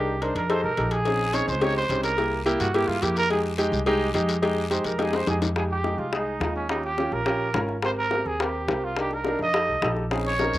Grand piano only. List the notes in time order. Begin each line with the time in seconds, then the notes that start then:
Already playing: D4 D#4 A#4
0.21 D4 D#4 A#4
0.49 D#4 G4 A4
0.78 D#4 G4 A4
1.06 C4 C#4 D#4 G#4
1.33 C4 C#4 D#4 G#4
1.62 C4 C#4 D#4 G4
1.90 C4 C#4 D#4 G4
2.18 A#3 E4 G4
2.46 A#3 E4 G4
2.75 A#3 E4 G4
3.02 A#3 E4 G4
3.30 G#3 D#4 G4
3.58 G#3 D#4 G4
3.87 G#3 D#4 G4
4.14 G#3 D#4 G4
4.42 G#3 D#4 G4
4.70 G#3 D#4 G4
4.98 G#3 D#4 G4
5.27 G#3 D#4 G4
5.56 G#3 D#4 G4
5.84 G#3 D#4 G4
6.13 G#3 D#4 G#4
6.41 G#3 D#4 F4
6.69 C#4 F4 G4
6.98 C#4 F4 G4
7.26 C#4 F4 G4
7.55 C#4 F4 A#4
7.83 C4 G4 A#4
8.12 C4 G4 A#4
8.40 C4 G4 A#4
8.68 C4 G4 A#4
8.97 D4 D#4 A#4
9.26 D4 D#4 A#4
9.54 D#4 G4 A4
9.83 D#4 G4 A4
10.11 C4 C#4 D#4 G#4
10.40 C4 C#4 D#4 A#4